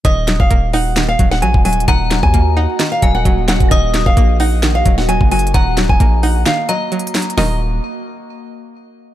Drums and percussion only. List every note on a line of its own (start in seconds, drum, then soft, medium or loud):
0.05 kick loud
0.05 closed hi-hat medium
0.28 snare loud
0.28 clap medium
0.28 closed hi-hat medium
0.40 kick loud
0.51 kick loud
0.51 closed hi-hat medium
0.73 open hi-hat medium
0.96 snare loud
0.96 clap loud
0.96 closed hi-hat medium
1.19 kick loud
1.19 closed hi-hat medium
1.31 snare medium
1.42 closed hi-hat medium
1.54 kick loud
1.65 closed hi-hat medium
1.65 open hi-hat medium
1.73 closed hi-hat medium
1.80 closed hi-hat medium
1.88 kick loud
1.88 closed hi-hat medium
2.11 snare loud
2.11 clap medium
2.11 closed hi-hat medium
2.23 kick loud
2.34 kick loud
2.34 closed hi-hat medium
2.80 snare loud
2.80 clap loud
2.80 closed hi-hat medium
3.02 kick loud
3.02 closed hi-hat medium
3.25 kick medium
3.25 closed hi-hat medium
3.48 snare loud
3.48 clap medium
3.48 closed hi-hat medium
3.60 kick loud
3.60 closed hi-hat soft
3.71 kick loud
3.71 closed hi-hat medium
3.94 snare loud
3.94 clap medium
3.94 closed hi-hat medium
4.06 kick medium
4.17 kick loud
4.17 closed hi-hat medium
4.40 open hi-hat medium
4.63 snare loud
4.63 clap loud
4.63 closed hi-hat medium
4.86 kick loud
4.86 closed hi-hat medium
4.98 snare medium
5.09 closed hi-hat medium
5.21 kick loud
5.31 closed hi-hat medium
5.31 open hi-hat medium
5.39 closed hi-hat medium
5.47 closed hi-hat medium
5.54 kick loud
5.54 closed hi-hat medium
5.77 snare loud
5.77 clap medium
5.77 closed hi-hat medium
5.89 kick medium
6.00 kick loud
6.00 closed hi-hat medium
6.23 open hi-hat medium
6.46 snare loud
6.46 clap loud
6.46 closed hi-hat medium
6.69 closed hi-hat medium
6.92 closed hi-hat soft
6.99 closed hi-hat medium
7.07 closed hi-hat medium
7.15 snare loud
7.15 clap medium
7.15 closed hi-hat medium
7.15 open hi-hat medium
7.22 closed hi-hat medium
7.30 closed hi-hat medium
7.38 snare loud
7.38 open hi-hat medium